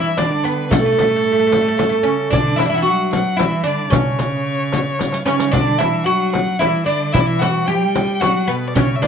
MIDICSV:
0, 0, Header, 1, 7, 480
1, 0, Start_track
1, 0, Tempo, 536673
1, 637, Time_signature, 3, 2, 24, 8
1, 8116, End_track
2, 0, Start_track
2, 0, Title_t, "Violin"
2, 0, Program_c, 0, 40
2, 0, Note_on_c, 0, 76, 76
2, 158, Note_on_c, 0, 74, 70
2, 171, Note_off_c, 0, 76, 0
2, 394, Note_on_c, 0, 71, 76
2, 407, Note_off_c, 0, 74, 0
2, 634, Note_on_c, 0, 69, 89
2, 648, Note_off_c, 0, 71, 0
2, 2065, Note_off_c, 0, 69, 0
2, 2070, Note_on_c, 0, 74, 82
2, 2310, Note_on_c, 0, 76, 74
2, 2324, Note_off_c, 0, 74, 0
2, 2424, Note_off_c, 0, 76, 0
2, 2429, Note_on_c, 0, 76, 74
2, 2457, Note_on_c, 0, 78, 60
2, 2471, Note_off_c, 0, 76, 0
2, 2476, Note_on_c, 0, 76, 73
2, 2490, Note_off_c, 0, 78, 0
2, 2558, Note_on_c, 0, 78, 86
2, 2572, Note_off_c, 0, 76, 0
2, 2792, Note_off_c, 0, 78, 0
2, 2797, Note_on_c, 0, 78, 82
2, 3021, Note_on_c, 0, 76, 72
2, 3034, Note_off_c, 0, 78, 0
2, 3265, Note_off_c, 0, 76, 0
2, 3271, Note_on_c, 0, 74, 79
2, 3513, Note_on_c, 0, 73, 92
2, 3527, Note_off_c, 0, 74, 0
2, 4694, Note_off_c, 0, 73, 0
2, 4699, Note_on_c, 0, 73, 82
2, 4944, Note_on_c, 0, 74, 82
2, 4958, Note_off_c, 0, 73, 0
2, 5173, Note_on_c, 0, 76, 76
2, 5186, Note_off_c, 0, 74, 0
2, 5407, Note_on_c, 0, 78, 87
2, 5420, Note_off_c, 0, 76, 0
2, 5646, Note_off_c, 0, 78, 0
2, 5651, Note_on_c, 0, 78, 82
2, 5896, Note_on_c, 0, 76, 75
2, 5910, Note_off_c, 0, 78, 0
2, 6131, Note_off_c, 0, 76, 0
2, 6137, Note_on_c, 0, 74, 81
2, 6373, Note_on_c, 0, 76, 87
2, 6387, Note_off_c, 0, 74, 0
2, 6440, Note_on_c, 0, 74, 73
2, 6454, Note_off_c, 0, 76, 0
2, 6498, Note_on_c, 0, 76, 87
2, 6511, Note_off_c, 0, 74, 0
2, 6613, Note_on_c, 0, 78, 86
2, 6626, Note_off_c, 0, 76, 0
2, 6857, Note_on_c, 0, 79, 105
2, 6871, Note_off_c, 0, 78, 0
2, 7335, Note_on_c, 0, 78, 89
2, 7348, Note_off_c, 0, 79, 0
2, 7584, Note_on_c, 0, 71, 85
2, 7597, Note_off_c, 0, 78, 0
2, 7762, Note_on_c, 0, 74, 65
2, 7776, Note_off_c, 0, 71, 0
2, 7823, Note_on_c, 0, 73, 88
2, 7837, Note_off_c, 0, 74, 0
2, 8013, Note_on_c, 0, 76, 62
2, 8027, Note_off_c, 0, 73, 0
2, 8077, Note_on_c, 0, 74, 77
2, 8090, Note_off_c, 0, 76, 0
2, 8116, Note_off_c, 0, 74, 0
2, 8116, End_track
3, 0, Start_track
3, 0, Title_t, "Oud"
3, 0, Program_c, 1, 24
3, 11, Note_on_c, 1, 64, 62
3, 80, Note_off_c, 1, 64, 0
3, 156, Note_on_c, 1, 62, 81
3, 402, Note_on_c, 1, 59, 78
3, 404, Note_off_c, 1, 62, 0
3, 623, Note_off_c, 1, 59, 0
3, 635, Note_on_c, 1, 57, 81
3, 696, Note_off_c, 1, 57, 0
3, 707, Note_on_c, 1, 57, 56
3, 748, Note_off_c, 1, 57, 0
3, 759, Note_on_c, 1, 57, 62
3, 812, Note_off_c, 1, 57, 0
3, 823, Note_on_c, 1, 57, 51
3, 895, Note_off_c, 1, 57, 0
3, 906, Note_on_c, 1, 57, 58
3, 958, Note_off_c, 1, 57, 0
3, 969, Note_on_c, 1, 57, 47
3, 1027, Note_off_c, 1, 57, 0
3, 1038, Note_on_c, 1, 57, 55
3, 1096, Note_off_c, 1, 57, 0
3, 1107, Note_on_c, 1, 57, 48
3, 1169, Note_off_c, 1, 57, 0
3, 1179, Note_on_c, 1, 57, 60
3, 1233, Note_off_c, 1, 57, 0
3, 1244, Note_on_c, 1, 57, 50
3, 1301, Note_off_c, 1, 57, 0
3, 1312, Note_on_c, 1, 57, 54
3, 1362, Note_off_c, 1, 57, 0
3, 1372, Note_on_c, 1, 57, 50
3, 1429, Note_off_c, 1, 57, 0
3, 1440, Note_on_c, 1, 57, 60
3, 1493, Note_off_c, 1, 57, 0
3, 1504, Note_on_c, 1, 57, 54
3, 1572, Note_off_c, 1, 57, 0
3, 1585, Note_on_c, 1, 57, 64
3, 1631, Note_off_c, 1, 57, 0
3, 1641, Note_on_c, 1, 57, 55
3, 1681, Note_off_c, 1, 57, 0
3, 1692, Note_on_c, 1, 57, 65
3, 1765, Note_off_c, 1, 57, 0
3, 1818, Note_on_c, 1, 61, 80
3, 2058, Note_off_c, 1, 61, 0
3, 2061, Note_on_c, 1, 62, 92
3, 2288, Note_off_c, 1, 62, 0
3, 2291, Note_on_c, 1, 64, 85
3, 2366, Note_off_c, 1, 64, 0
3, 2376, Note_on_c, 1, 62, 77
3, 2408, Note_off_c, 1, 62, 0
3, 2411, Note_on_c, 1, 64, 83
3, 2472, Note_off_c, 1, 64, 0
3, 2483, Note_on_c, 1, 64, 66
3, 2521, Note_off_c, 1, 64, 0
3, 2525, Note_on_c, 1, 66, 91
3, 3007, Note_off_c, 1, 66, 0
3, 3011, Note_on_c, 1, 64, 94
3, 3248, Note_off_c, 1, 64, 0
3, 3252, Note_on_c, 1, 62, 89
3, 3486, Note_off_c, 1, 62, 0
3, 3490, Note_on_c, 1, 61, 96
3, 4690, Note_off_c, 1, 61, 0
3, 4701, Note_on_c, 1, 61, 87
3, 4929, Note_off_c, 1, 61, 0
3, 4933, Note_on_c, 1, 62, 96
3, 5170, Note_off_c, 1, 62, 0
3, 5174, Note_on_c, 1, 64, 84
3, 5414, Note_off_c, 1, 64, 0
3, 5418, Note_on_c, 1, 66, 100
3, 5893, Note_off_c, 1, 66, 0
3, 5897, Note_on_c, 1, 64, 92
3, 6132, Note_off_c, 1, 64, 0
3, 6136, Note_on_c, 1, 62, 93
3, 6380, Note_off_c, 1, 62, 0
3, 6383, Note_on_c, 1, 64, 95
3, 6612, Note_off_c, 1, 64, 0
3, 6635, Note_on_c, 1, 66, 98
3, 6862, Note_off_c, 1, 66, 0
3, 6865, Note_on_c, 1, 67, 106
3, 7339, Note_off_c, 1, 67, 0
3, 7342, Note_on_c, 1, 66, 95
3, 7580, Note_on_c, 1, 59, 89
3, 7597, Note_off_c, 1, 66, 0
3, 7830, Note_off_c, 1, 59, 0
3, 7834, Note_on_c, 1, 61, 97
3, 8064, Note_off_c, 1, 61, 0
3, 8067, Note_on_c, 1, 62, 85
3, 8116, Note_off_c, 1, 62, 0
3, 8116, End_track
4, 0, Start_track
4, 0, Title_t, "Cello"
4, 0, Program_c, 2, 42
4, 0, Note_on_c, 2, 52, 77
4, 175, Note_on_c, 2, 50, 74
4, 188, Note_off_c, 2, 52, 0
4, 652, Note_on_c, 2, 45, 86
4, 665, Note_off_c, 2, 50, 0
4, 1849, Note_on_c, 2, 49, 71
4, 1863, Note_off_c, 2, 45, 0
4, 2082, Note_off_c, 2, 49, 0
4, 2088, Note_on_c, 2, 50, 87
4, 2320, Note_on_c, 2, 52, 80
4, 2333, Note_off_c, 2, 50, 0
4, 2438, Note_off_c, 2, 52, 0
4, 2443, Note_on_c, 2, 52, 78
4, 2567, Note_on_c, 2, 54, 84
4, 2580, Note_off_c, 2, 52, 0
4, 3051, Note_on_c, 2, 52, 86
4, 3065, Note_off_c, 2, 54, 0
4, 3277, Note_on_c, 2, 50, 77
4, 3290, Note_off_c, 2, 52, 0
4, 3504, Note_off_c, 2, 50, 0
4, 3509, Note_on_c, 2, 49, 90
4, 4676, Note_off_c, 2, 49, 0
4, 4706, Note_on_c, 2, 49, 82
4, 4949, Note_on_c, 2, 50, 85
4, 4962, Note_off_c, 2, 49, 0
4, 5194, Note_on_c, 2, 52, 81
4, 5207, Note_off_c, 2, 50, 0
4, 5428, Note_on_c, 2, 54, 86
4, 5441, Note_off_c, 2, 52, 0
4, 5909, Note_off_c, 2, 54, 0
4, 5914, Note_on_c, 2, 52, 82
4, 6140, Note_on_c, 2, 50, 80
4, 6153, Note_off_c, 2, 52, 0
4, 6401, Note_on_c, 2, 52, 91
4, 6415, Note_off_c, 2, 50, 0
4, 6872, Note_on_c, 2, 55, 89
4, 6885, Note_off_c, 2, 52, 0
4, 7345, Note_on_c, 2, 54, 86
4, 7359, Note_off_c, 2, 55, 0
4, 7599, Note_on_c, 2, 47, 77
4, 7612, Note_off_c, 2, 54, 0
4, 7831, Note_on_c, 2, 49, 87
4, 7845, Note_off_c, 2, 47, 0
4, 8072, Note_on_c, 2, 50, 82
4, 8085, Note_off_c, 2, 49, 0
4, 8116, Note_off_c, 2, 50, 0
4, 8116, End_track
5, 0, Start_track
5, 0, Title_t, "Darbuka"
5, 157, Note_on_c, 9, 63, 65
5, 246, Note_off_c, 9, 63, 0
5, 639, Note_on_c, 9, 64, 81
5, 728, Note_off_c, 9, 64, 0
5, 881, Note_on_c, 9, 63, 66
5, 970, Note_off_c, 9, 63, 0
5, 1363, Note_on_c, 9, 63, 67
5, 1452, Note_off_c, 9, 63, 0
5, 1601, Note_on_c, 9, 63, 69
5, 1690, Note_off_c, 9, 63, 0
5, 2081, Note_on_c, 9, 64, 86
5, 2171, Note_off_c, 9, 64, 0
5, 2317, Note_on_c, 9, 63, 73
5, 2406, Note_off_c, 9, 63, 0
5, 2798, Note_on_c, 9, 63, 70
5, 2887, Note_off_c, 9, 63, 0
5, 3033, Note_on_c, 9, 63, 67
5, 3123, Note_off_c, 9, 63, 0
5, 3509, Note_on_c, 9, 64, 98
5, 3599, Note_off_c, 9, 64, 0
5, 3745, Note_on_c, 9, 63, 69
5, 3835, Note_off_c, 9, 63, 0
5, 4226, Note_on_c, 9, 63, 71
5, 4315, Note_off_c, 9, 63, 0
5, 4465, Note_on_c, 9, 63, 59
5, 4555, Note_off_c, 9, 63, 0
5, 4582, Note_on_c, 9, 62, 62
5, 4672, Note_off_c, 9, 62, 0
5, 4708, Note_on_c, 9, 63, 76
5, 4797, Note_off_c, 9, 63, 0
5, 4826, Note_on_c, 9, 62, 88
5, 4915, Note_off_c, 9, 62, 0
5, 4949, Note_on_c, 9, 64, 85
5, 5039, Note_off_c, 9, 64, 0
5, 5191, Note_on_c, 9, 63, 73
5, 5281, Note_off_c, 9, 63, 0
5, 5666, Note_on_c, 9, 63, 75
5, 5755, Note_off_c, 9, 63, 0
5, 5910, Note_on_c, 9, 63, 70
5, 5999, Note_off_c, 9, 63, 0
5, 6392, Note_on_c, 9, 64, 84
5, 6482, Note_off_c, 9, 64, 0
5, 6631, Note_on_c, 9, 63, 68
5, 6721, Note_off_c, 9, 63, 0
5, 7117, Note_on_c, 9, 63, 69
5, 7206, Note_off_c, 9, 63, 0
5, 7353, Note_on_c, 9, 63, 76
5, 7442, Note_off_c, 9, 63, 0
5, 7836, Note_on_c, 9, 64, 84
5, 7926, Note_off_c, 9, 64, 0
5, 8075, Note_on_c, 9, 63, 72
5, 8116, Note_off_c, 9, 63, 0
5, 8116, End_track
6, 0, Start_track
6, 0, Title_t, "Frame drum"
6, 170, Note_on_c, 9, 64, 70
6, 259, Note_off_c, 9, 64, 0
6, 648, Note_on_c, 9, 64, 100
6, 738, Note_off_c, 9, 64, 0
6, 894, Note_on_c, 9, 64, 68
6, 983, Note_off_c, 9, 64, 0
6, 1371, Note_on_c, 9, 64, 71
6, 1461, Note_off_c, 9, 64, 0
6, 1606, Note_on_c, 9, 64, 70
6, 1696, Note_off_c, 9, 64, 0
6, 2085, Note_on_c, 9, 64, 93
6, 2174, Note_off_c, 9, 64, 0
6, 2326, Note_on_c, 9, 64, 69
6, 2415, Note_off_c, 9, 64, 0
6, 2802, Note_on_c, 9, 64, 78
6, 2892, Note_off_c, 9, 64, 0
6, 3045, Note_on_c, 9, 64, 78
6, 3134, Note_off_c, 9, 64, 0
6, 3515, Note_on_c, 9, 64, 94
6, 3605, Note_off_c, 9, 64, 0
6, 3755, Note_on_c, 9, 64, 73
6, 3844, Note_off_c, 9, 64, 0
6, 4236, Note_on_c, 9, 64, 77
6, 4326, Note_off_c, 9, 64, 0
6, 4478, Note_on_c, 9, 64, 73
6, 4568, Note_off_c, 9, 64, 0
6, 4952, Note_on_c, 9, 64, 90
6, 5042, Note_off_c, 9, 64, 0
6, 5197, Note_on_c, 9, 64, 71
6, 5286, Note_off_c, 9, 64, 0
6, 5681, Note_on_c, 9, 64, 74
6, 5771, Note_off_c, 9, 64, 0
6, 5921, Note_on_c, 9, 64, 72
6, 6011, Note_off_c, 9, 64, 0
6, 6392, Note_on_c, 9, 64, 86
6, 6481, Note_off_c, 9, 64, 0
6, 6638, Note_on_c, 9, 64, 71
6, 6727, Note_off_c, 9, 64, 0
6, 7116, Note_on_c, 9, 64, 76
6, 7206, Note_off_c, 9, 64, 0
6, 7363, Note_on_c, 9, 64, 72
6, 7452, Note_off_c, 9, 64, 0
6, 7839, Note_on_c, 9, 64, 91
6, 7929, Note_off_c, 9, 64, 0
6, 8084, Note_on_c, 9, 64, 69
6, 8116, Note_off_c, 9, 64, 0
6, 8116, End_track
7, 0, Start_track
7, 0, Title_t, "Riq"
7, 162, Note_on_c, 9, 54, 46
7, 251, Note_off_c, 9, 54, 0
7, 646, Note_on_c, 9, 54, 64
7, 736, Note_off_c, 9, 54, 0
7, 884, Note_on_c, 9, 54, 47
7, 973, Note_off_c, 9, 54, 0
7, 1363, Note_on_c, 9, 54, 46
7, 1452, Note_off_c, 9, 54, 0
7, 1603, Note_on_c, 9, 54, 49
7, 1692, Note_off_c, 9, 54, 0
7, 2083, Note_on_c, 9, 54, 60
7, 2172, Note_off_c, 9, 54, 0
7, 2322, Note_on_c, 9, 54, 46
7, 2411, Note_off_c, 9, 54, 0
7, 2800, Note_on_c, 9, 54, 47
7, 2890, Note_off_c, 9, 54, 0
7, 3038, Note_on_c, 9, 54, 47
7, 3127, Note_off_c, 9, 54, 0
7, 3514, Note_on_c, 9, 54, 58
7, 3603, Note_off_c, 9, 54, 0
7, 3749, Note_on_c, 9, 54, 47
7, 3839, Note_off_c, 9, 54, 0
7, 4233, Note_on_c, 9, 54, 46
7, 4322, Note_off_c, 9, 54, 0
7, 4480, Note_on_c, 9, 54, 57
7, 4570, Note_off_c, 9, 54, 0
7, 4596, Note_on_c, 9, 54, 64
7, 4685, Note_off_c, 9, 54, 0
7, 4719, Note_on_c, 9, 54, 69
7, 4809, Note_off_c, 9, 54, 0
7, 4829, Note_on_c, 9, 54, 81
7, 4918, Note_off_c, 9, 54, 0
7, 4947, Note_on_c, 9, 54, 58
7, 5037, Note_off_c, 9, 54, 0
7, 5189, Note_on_c, 9, 54, 51
7, 5278, Note_off_c, 9, 54, 0
7, 5914, Note_on_c, 9, 54, 52
7, 6003, Note_off_c, 9, 54, 0
7, 6390, Note_on_c, 9, 54, 61
7, 6479, Note_off_c, 9, 54, 0
7, 6634, Note_on_c, 9, 54, 55
7, 6723, Note_off_c, 9, 54, 0
7, 7115, Note_on_c, 9, 54, 48
7, 7204, Note_off_c, 9, 54, 0
7, 7354, Note_on_c, 9, 54, 50
7, 7444, Note_off_c, 9, 54, 0
7, 7829, Note_on_c, 9, 54, 55
7, 7919, Note_off_c, 9, 54, 0
7, 8069, Note_on_c, 9, 54, 50
7, 8116, Note_off_c, 9, 54, 0
7, 8116, End_track
0, 0, End_of_file